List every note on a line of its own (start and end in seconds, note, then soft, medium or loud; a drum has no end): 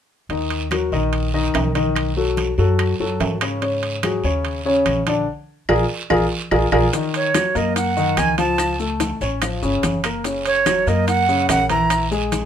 0.29 0.88 D#2 medium
0.29 0.64 D#3 medium
0.29 0.64 D#4 medium
0.29 0.64 D#5 medium
0.29 high conga soft
0.29 high timbale soft
0.29 long guiro medium
0.50 high conga soft
0.50 high timbale medium
0.71 0.88 F#3 medium
0.71 0.89 F#4 medium
0.71 0.89 A#4 medium
0.71 high conga medium
0.71 high timbale medium
0.71 short guiro medium
0.71 claves soft
0.92 1.50 A#1 medium
0.92 1.26 D#3 medium
0.92 1.26 D#4 medium
0.92 1.27 D#5 medium
0.92 high conga soft
0.92 short guiro medium
1.13 high conga soft
1.13 high timbale medium
1.13 long guiro medium
1.33 1.68 D#3 medium
1.33 1.68 D#4 medium
1.33 1.68 D#5 medium
1.33 high conga soft
1.54 2.52 B1 medium
1.54 high conga medium
1.54 high timbale medium
1.54 low timbale medium
1.54 short guiro medium
1.54 claves medium
1.75 2.09 D#3 medium
1.75 2.09 D#4 medium
1.75 2.09 D#5 medium
1.75 high conga medium
1.75 high timbale medium
1.75 short guiro medium
1.96 high conga soft
1.96 high timbale medium
1.96 long guiro medium
1.96 claves medium
2.17 2.51 F#3 medium
2.17 2.51 F#4 medium
2.17 2.51 A4 medium
2.17 high conga soft
2.37 high conga medium
2.37 high timbale medium
2.37 short guiro medium
2.58 2.97 F#2 medium
2.58 2.92 F#3 medium
2.58 2.93 F#4 medium
2.58 2.93 A4 medium
2.58 short guiro medium
2.79 high conga soft
2.79 high timbale medium
2.79 long guiro medium
2.79 claves medium
2.99 3.19 F#2 medium
2.99 3.34 F#3 medium
2.99 3.34 F#4 medium
2.99 3.34 A4 medium
2.99 high conga soft
3.20 4.18 G#2 medium
3.20 high conga medium
3.20 high timbale medium
3.20 low timbale medium
3.20 short guiro medium
3.41 3.58 C#3 medium
3.41 3.59 C#4 medium
3.41 3.59 C#5 medium
3.41 high conga soft
3.41 high timbale medium
3.41 short guiro medium
3.41 claves medium
3.62 3.96 C#3 medium
3.62 3.96 C#4 medium
3.62 3.96 C#5 medium
3.62 high conga soft
3.62 high timbale medium
3.62 long guiro medium
3.83 high conga soft
3.83 high timbale medium
4.03 4.21 F#3 medium
4.03 4.21 F#4 medium
4.03 4.21 G#4 medium
4.03 high conga medium
4.03 high timbale medium
4.03 short guiro medium
4.03 claves medium
4.24 4.82 D#2 medium
4.24 4.58 C#3 medium
4.24 4.58 C#4 medium
4.24 4.59 C#5 medium
4.24 high conga soft
4.24 short guiro medium
4.44 high conga soft
4.44 high timbale medium
4.44 long guiro medium
4.65 4.99 C#3 medium
4.65 5.00 C#4 medium
4.65 5.00 C#5 medium
4.65 high conga soft
4.86 5.25 A#1 medium
4.86 high conga medium
4.86 high timbale medium
4.86 short guiro medium
4.86 claves soft
5.07 5.24 D3 medium
5.07 5.24 D4 medium
5.07 5.24 D5 medium
5.07 high conga medium
5.07 high timbale medium
5.07 short guiro medium
5.69 5.84 A#1 medium
5.69 5.82 F4 medium
5.69 5.82 G#4 medium
5.69 5.82 A#4 medium
5.69 high conga medium
5.69 high timbale medium
5.69 long guiro medium
5.69 claves medium
6.10 6.26 A#1 medium
6.10 6.24 F4 medium
6.10 6.24 G#4 medium
6.10 6.24 A#4 medium
6.10 high conga medium
6.10 high timbale medium
6.10 long guiro medium
6.10 claves medium
6.51 6.67 A#1 medium
6.51 6.65 F4 medium
6.51 6.65 G#4 medium
6.51 6.65 A#4 medium
6.51 high conga medium
6.51 high timbale medium
6.51 long guiro medium
6.51 claves medium
6.72 6.88 A#1 medium
6.72 6.86 F4 medium
6.72 6.86 G#4 medium
6.72 6.86 A#4 medium
6.72 high conga medium
6.72 high timbale medium
6.72 long guiro medium
6.72 claves medium
6.93 7.27 D#3 medium
6.93 7.28 D#4 medium
6.93 high bongo medium
6.93 high conga soft
6.93 high timbale medium
6.93 long guiro medium
6.93 maracas medium
7.14 7.58 C#5 medium
7.14 high conga soft
7.14 high timbale medium
7.14 maracas soft
7.34 7.52 F#3 medium
7.34 7.52 F#4 medium
7.34 high bongo medium
7.34 high conga medium
7.34 high timbale medium
7.34 short guiro medium
7.34 claves medium
7.34 maracas medium
7.55 8.13 F#2 medium
7.55 7.89 A#3 medium
7.55 7.89 A#4 medium
7.55 7.76 D#5 medium
7.55 high conga soft
7.55 short guiro medium
7.55 maracas soft
7.76 8.20 F#5 medium
7.76 high bongo medium
7.76 high conga soft
7.76 high timbale medium
7.76 long guiro medium
7.76 maracas medium
7.97 8.31 D#3 medium
7.97 8.31 D#4 medium
7.97 high conga soft
7.97 maracas soft
8.17 9.15 C#2 medium
8.17 8.38 G#5 medium
8.17 high bongo medium
8.17 low bongo medium
8.17 high conga medium
8.17 high timbale medium
8.17 short guiro medium
8.17 claves medium
8.17 maracas medium
8.38 8.72 F3 medium
8.38 8.72 F4 medium
8.38 8.77 A5 medium
8.38 high timbale medium
8.38 short guiro medium
8.38 maracas soft
8.58 high bongo medium
8.58 high timbale medium
8.58 long guiro medium
8.58 claves medium
8.58 maracas medium
8.79 9.13 A3 medium
8.79 9.14 A4 medium
8.79 high bongo soft
8.79 high conga soft
8.79 maracas soft
9.00 high bongo medium
9.00 high conga medium
9.00 high timbale medium
9.00 short guiro medium
9.00 maracas medium
9.21 9.59 A1 medium
9.21 9.38 C#4 medium
9.21 9.38 C#5 medium
9.21 high bongo soft
9.21 short guiro medium
9.21 maracas soft
9.42 9.59 F3 medium
9.42 9.59 F4 medium
9.42 high bongo medium
9.42 high conga soft
9.42 high timbale medium
9.42 long guiro medium
9.42 claves medium
9.42 maracas medium
9.62 9.82 G1 medium
9.62 9.96 C#3 medium
9.62 9.97 C#4 medium
9.62 high conga soft
9.62 maracas soft
9.83 10.81 F#1 medium
9.83 high bongo medium
9.83 low bongo medium
9.83 high conga medium
9.83 high timbale medium
9.83 short guiro medium
9.83 maracas medium
10.04 10.21 A#3 medium
10.04 10.21 A#4 medium
10.04 high bongo soft
10.04 high timbale medium
10.04 short guiro medium
10.04 claves medium
10.04 maracas soft
10.24 10.59 C#3 medium
10.24 10.59 C#4 medium
10.24 high bongo medium
10.24 high conga soft
10.24 high timbale medium
10.24 long guiro medium
10.24 maracas medium
10.46 10.90 C#5 medium
10.46 high conga soft
10.46 high timbale medium
10.46 maracas soft
10.66 10.83 F#3 medium
10.66 10.84 F#4 medium
10.66 high bongo medium
10.66 high conga medium
10.66 high timbale medium
10.66 short guiro medium
10.66 claves medium
10.66 maracas medium
10.86 11.45 F#2 medium
10.86 11.21 A#3 medium
10.86 11.21 A#4 medium
10.86 11.08 D#5 medium
10.86 high conga soft
10.86 short guiro medium
10.86 maracas soft
11.07 11.47 F#5 loud
11.07 high bongo medium
11.07 high conga soft
11.07 high timbale medium
11.07 long guiro medium
11.07 maracas medium
11.28 11.62 C#3 medium
11.28 11.63 C#4 medium
11.28 high conga soft
11.28 maracas soft
11.49 12.45 A#1 medium
11.49 11.69 F#5 loud
11.49 high bongo medium
11.49 low bongo medium
11.49 high conga medium
11.49 high timbale medium
11.49 low timbale medium
11.49 short guiro medium
11.49 claves medium
11.49 maracas medium
11.70 12.04 E3 medium
11.70 12.04 E4 medium
11.70 12.09 A#5 medium
11.70 high conga medium
11.70 high timbale medium
11.70 short guiro medium
11.70 maracas soft
11.90 high bongo medium
11.90 high conga soft
11.90 high timbale medium
11.90 long guiro medium
11.90 claves medium
11.90 maracas medium
12.11 12.45 G#3 medium
12.11 12.45 G#4 medium
12.11 high bongo soft
12.11 high conga soft
12.11 maracas soft
12.32 high bongo medium
12.32 high conga medium
12.32 high timbale medium
12.32 short guiro medium
12.32 maracas medium